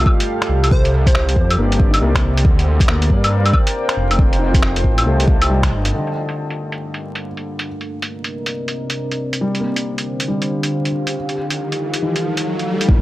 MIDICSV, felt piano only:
0, 0, Header, 1, 2, 480
1, 0, Start_track
1, 0, Tempo, 434783
1, 786, Time_signature, 4, 2, 24, 8
1, 14369, End_track
2, 0, Start_track
2, 0, Title_t, "Felt piano"
2, 0, Program_c, 0, 0
2, 0, Control_c, 0, 64, 127
2, 0, Note_on_c, 0, 57, 61
2, 0, Note_on_c, 0, 65, 81
2, 0, Note_on_c, 0, 67, 55
2, 802, Control_c, 0, 64, 0
2, 807, Note_off_c, 0, 67, 0
2, 982, Note_off_c, 0, 65, 0
2, 983, Note_off_c, 0, 57, 0
2, 1002, Control_c, 0, 64, 127
2, 1748, Note_on_c, 0, 58, 73
2, 1954, Note_on_c, 0, 62, 56
2, 2100, Note_on_c, 0, 63, 54
2, 2210, Note_off_c, 0, 58, 0
2, 2227, Note_on_c, 0, 58, 82
2, 2719, Control_c, 0, 64, 0
2, 2885, Control_c, 0, 64, 127
2, 2902, Note_off_c, 0, 58, 0
2, 3081, Note_off_c, 0, 62, 0
2, 3179, Note_on_c, 0, 58, 77
2, 3199, Note_off_c, 0, 63, 0
2, 4624, Note_on_c, 0, 60, 65
2, 4640, Note_off_c, 0, 58, 0
2, 4642, Control_c, 0, 64, 0
2, 4836, Note_on_c, 0, 63, 56
2, 4863, Control_c, 0, 64, 127
2, 4977, Note_on_c, 0, 65, 56
2, 5582, Note_on_c, 0, 57, 81
2, 6066, Note_on_c, 0, 55, 65
2, 6083, Note_off_c, 0, 60, 0
2, 6239, Note_off_c, 0, 63, 0
2, 6379, Note_off_c, 0, 65, 0
2, 6556, Note_on_c, 0, 50, 68
2, 6562, Control_c, 0, 64, 0
2, 6732, Control_c, 0, 64, 127
2, 6740, Note_off_c, 0, 57, 0
2, 6742, Note_off_c, 0, 55, 0
2, 8008, Note_off_c, 0, 50, 0
2, 8478, Control_c, 0, 64, 0
2, 10390, Note_on_c, 0, 55, 65
2, 10594, Note_on_c, 0, 58, 49
2, 10602, Control_c, 0, 64, 127
2, 11333, Note_off_c, 0, 55, 0
2, 11349, Note_on_c, 0, 55, 55
2, 11998, Note_off_c, 0, 58, 0
2, 12322, Control_c, 0, 64, 0
2, 12503, Note_off_c, 0, 55, 0
2, 12514, Control_c, 0, 64, 127
2, 13272, Note_on_c, 0, 51, 48
2, 14224, Note_on_c, 0, 46, 73
2, 14239, Control_c, 0, 64, 0
2, 14369, Note_off_c, 0, 46, 0
2, 14369, Note_off_c, 0, 51, 0
2, 14369, End_track
0, 0, End_of_file